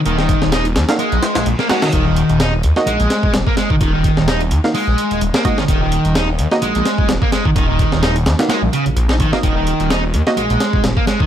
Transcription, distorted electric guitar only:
X:1
M:4/4
L:1/16
Q:"Swing 16ths" 1/4=128
K:Cphr
V:1 name="Distorted electric guitar" clef=bass
E, E,3 E z3 A,4 z B, A, E, | E, E,3 E z3 A,4 z B, A, E, | E, E,3 E z3 A,4 z B, A, E, | E, E,3 E z3 A,4 z B, A, E, |
E, E,3 E z3 A, z D, z2 E E, B, | E, E,3 E z3 A,4 z B, A, E, |]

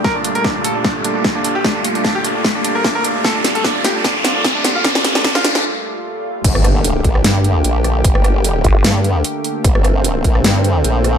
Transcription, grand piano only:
X:1
M:4/4
L:1/16
Q:"Swing 16ths" 1/4=150
K:Gm
V:1 name="Grand piano"
B D D B D D A D D z D D z D D G | D D z D D G D D z D D B D B D D | A D D A D D G D D z D D z D D F | D D z D D F D D z8 |
z16 | z16 | z16 |]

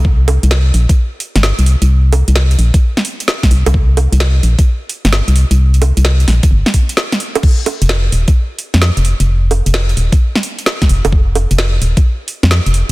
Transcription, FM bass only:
X:1
M:4/4
L:1/16
Q:"Swing 16ths" 1/4=130
K:Cm
V:1 name="FM bass" clef=bass
C,,3 C,,3 B,,, z4 G,,,2 C,,2 C,,- | C,,3 C,,3 B,,, z6 z C,, C,,- | C,,3 C,,3 B,,, z4 G,,,2 C,,2 C,,- | C,,3 C,,3 B,,, z G,,, z6 z |
z3 F,,,3 E,,, z4 F,,2 F,,,2 F,,,- | F,,,3 F,,,3 E,,, z6 z F,,, F,,,- | F,,,3 F,,,3 E,,, z4 F,,2 F,,,2 z |]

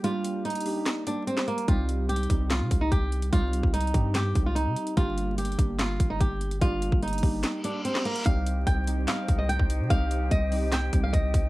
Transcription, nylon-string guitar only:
X:1
M:4/4
L:1/16
Q:1/4=146
K:Cm
V:1 name="Nylon-string guitar"
F4 E6 D2 C2 B,2 | F4 G4 F3 E G4 | F4 E4 G3 F E4 | F4 G4 F3 E G4 |
F4 E6 D2 C2 B,2 | f4 g4 f3 e g4 | f4 e4 g3 f e4 |]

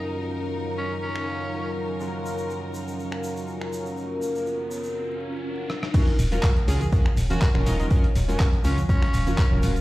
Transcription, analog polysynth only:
X:1
M:4/4
L:1/16
Q:"Swing 16ths" 1/4=122
K:Ebm
V:1 name="Analog polysynth"
[DFGB]16 | [DFGB]16- | [DFGB]12- [DFGB]2 z2 | [DFGB] z2 [DFGB]2 z [DFGB] z [DFGB] z2 [DFGB] z [DFGB]3 |
[DFGB] z2 [DFGB]2 z [DFGB] z [DFGB] z2 [DFGB] z [DFGB]3 |]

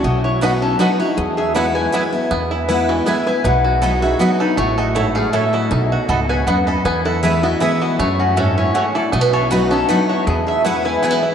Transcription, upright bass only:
X:1
M:3/4
L:1/8
Q:"Swing" 1/4=158
K:E
V:1 name="Upright bass" clef=bass
B,,,6 | E,,6 | E,,6 | B,,,6 |
A,,,6 | B,,,2 C,,2 D,,2 | E,,6 | F,,6 |
B,,,6 | E,,6 |]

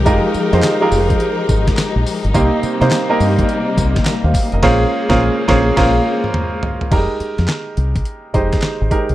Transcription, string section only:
X:1
M:4/4
L:1/8
Q:"Swing 16ths" 1/4=105
K:Fm
V:1 name="String section" clef=bass
[F,A,EGB]8 | [C,G,B,]8 | [D,A,B,]8 | z8 |]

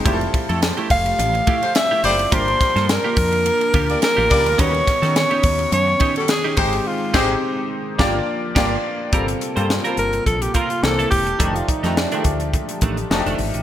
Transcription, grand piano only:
X:1
M:4/4
L:1/16
Q:"Swing 16ths" 1/4=106
K:F
V:1 name="Grand piano"
[G,CEFGA]4- [G,CEFGA] z8 z [G,CEFG] z | [G,B,DFB]4- [G,B,DFB] z8 z [G,B,DFB] z | [G,_D_E^F=B]4- [G,DEFB] z8 z [_A,CEGc]2 | z2 [_A,C_EGc]2 z4 [B,DFGd]2 z2 [B,DFGd]2 z2 |
[G,B,CFA]2 z [G,B,CFA] z [G,B,CFA]4- [G,B,CFA] z2 [E,B,CDA]3 z | [F,A,D_EG]2 z [F,A,DEG] z [F,_A,=A,DFG]4- [F,_A,=A,DFG] z2 [F,A,DE^FG]3 z |]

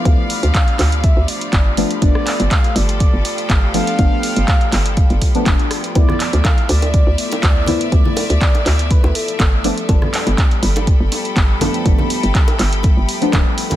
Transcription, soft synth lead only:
X:1
M:4/4
L:1/8
Q:"Swing 16ths" 1/4=122
K:Gmix
V:1 name="Soft synth lead"
f4 e d2 z | d2 f d3 f f- | f6 z2 | d2 f d3 d2 |
d4 B A2 z | z8 | z8 |]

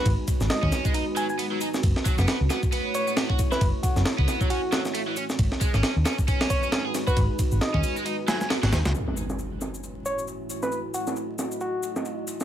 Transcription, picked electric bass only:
X:1
M:4/4
L:1/16
Q:"Swing 16ths" 1/4=135
K:F#dor
V:1 name="Picked electric bass" clef=bass
G,,, z2 G,,, z D,, z8 z2 | F,,, z2 F,,, z C,, z8 z2 | F,,, z2 F,,, z C,, z8 z2 | G,,, z2 G,,, z D,, z8 z2 |
G,,, z2 G,,, z D,, z6 z G,,, D,, C,, | z16 | z16 |]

